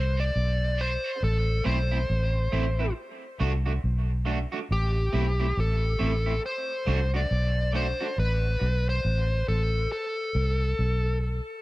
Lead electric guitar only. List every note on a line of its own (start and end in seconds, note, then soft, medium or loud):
0.00 0.22 C5 medium
0.20 0.81 D5 loud
0.81 1.23 C5 loud
1.24 1.66 A4 loud
1.66 2.93 C5 medium
4.72 5.61 G4 medium
5.60 6.41 A4 medium
6.46 7.11 C5 medium
7.16 7.71 D5 medium
7.76 8.19 C5 medium
8.20 8.89 B4 medium
8.89 9.48 C5 loud
9.48 9.91 A4 medium
9.92 11.18 A4 medium